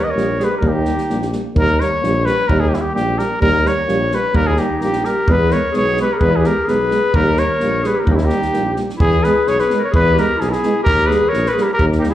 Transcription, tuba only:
0.16 A#1
0.61 D#2
1.10 A#1
1.55 D#2
2.03 A#1
2.49 D#2
2.96 A#1
3.42 D#2
3.88 A#1
4.35 D#2
4.81 A#1
5.29 E2
5.76 B1
6.22 E2
6.68 B1
7.15 D#2
7.62 A#1
8.08 D#2
8.55 A#1
9.01 E2
9.48 B1
9.93 E2
10.42 B1
10.88 D#2
11.33 A#1
11.80 D#2

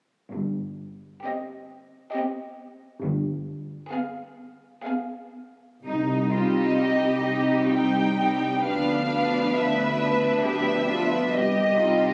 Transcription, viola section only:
1.26 C4
2.16 C4
3.92 B3
4.86 B3
6.34 G3 C4
7.27 G3 C4
8.19 G3 C4
8.65 F3 B3
9.10 F3 B3
9.99 F3 B3
10.89 F3 B3
11.79 G3 C4

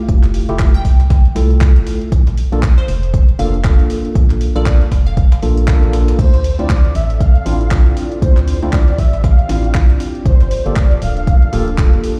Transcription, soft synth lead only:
6.19 C5
6.59 D5
6.95 E5
7.20 F5
8.22 C5
8.63 D5
8.98 E5
9.24 F5
10.26 C5
10.66 D5
11.02 F5
11.17 F5

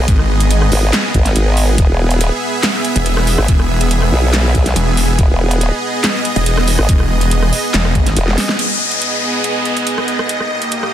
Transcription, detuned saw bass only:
0.08 G#1
2.96 E1
3.48 E1
4.76 E1
6.36 E1
6.89 E1
7.74 E1
7.95 G#1

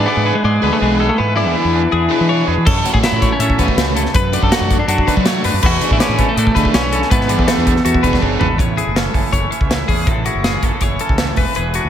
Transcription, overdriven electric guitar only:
0.08 E3 B3 D4 G#4
0.62 E3 B3 D4 G#4
0.81 E3 B3 D4 G#4
1.36 E3 B3 D4 G#4
1.56 E3 B3 D4 G#4
2.10 E3 B3 D4 G#4
2.29 E3 B3 D4 G#4
2.85 F#3 A3 C#4 F#4
3.04 F#3 A3 C#4 F#4
3.58 F#3 A3 C#4 F#4
3.77 F#3 A3 C#4 F#4
4.33 F#3 A3 D4 F#4
4.52 F#3 A3 D4 F#4
5.07 F#3 A3 D4 F#4
5.26 F#3 A3 D4 F#4
5.81 E3 B3 D4 G#4
6.00 E3 B3 D4 G#4
6.56 E3 B3 D4 G#4
6.74 E3 B3 D4 G#4
7.29 E3 B3 D4 G#4
7.48 E3 B3 D4 G#4
8.03 E3 B3 D4 G#4
8.21 E3 B3 D4 G#4

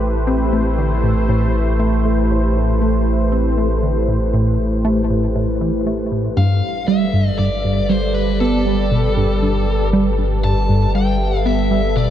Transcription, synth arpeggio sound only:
0.27 C4
0.53 A3
0.78 D3
1.03 A2
1.29 A2
1.80 A3
2.05 A2
2.31 A2
2.56 A2
2.81 A3
3.32 C4
3.58 A3
3.83 D3
4.08 A2
4.34 A2
4.85 A3
5.10 A2
5.36 A2
5.61 E3
5.87 A3
6.12 A2
6.37 G2
6.88 G3
7.14 G2
7.39 G2
7.64 G2
7.90 G3
8.41 B3
8.66 G3
8.92 B2
9.17 G2
9.43 G2
9.93 G3
10.19 G2
10.44 G2
10.69 G2
10.95 G3
11.46 B3
11.71 G3
11.96 B2

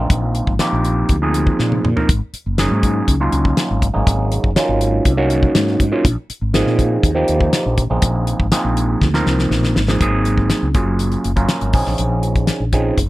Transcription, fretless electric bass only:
0.10 A#1
0.47 G#1
0.72 A#1
1.09 D2
1.59 A#2
1.84 A#2
2.09 G#1
2.33 muted fretless electric bass stroke
2.46 F#1
2.71 G#2
3.08 C#2
3.32 C#2
3.70 G#1
3.96 G#1
4.07 G#1
4.44 F#1
4.69 G#1
5.05 C2
5.55 G#2
5.80 G#2
6.05 A#1
6.29 muted fretless electric bass stroke
6.41 G#1
6.66 A#2
7.03 D#2
7.29 D#2
7.66 A#1
7.90 A#1
8.02 A#1
8.39 G#1
8.64 A#1
9.02 D2
9.26 C2
9.50 A#1
9.75 G#1
10.01 G#1
10.62 C#2
10.75 F#1
11.25 F#1
11.61 G#1
11.73 A#1
11.87 A#1
11.99 A#1
12.60 A#1
12.97 F#1

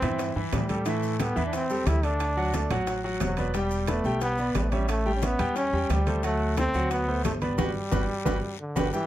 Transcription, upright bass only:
0.02 G2
0.36 G2
0.53 A2
1.36 E2
1.86 D2
2.70 A1
3.21 E1
4.04 B1
4.55 A1
5.39 E2
5.73 E2
5.90 D2
6.74 D2
7.25 G1
7.58 G1
7.92 G1
8.26 G1
8.76 G1

